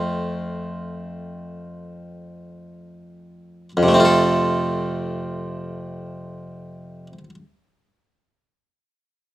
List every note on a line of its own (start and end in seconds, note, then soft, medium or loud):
0.00 3.69 F2 soft
0.00 3.70 A3 soft
0.00 3.71 C4 soft
0.00 3.72 F4 soft
3.77 7.07 F2 soft
3.83 7.12 C3 soft
3.88 7.18 A3 soft
3.94 7.24 C4 soft
4.00 7.30 F4 soft
4.05 7.35 A4 soft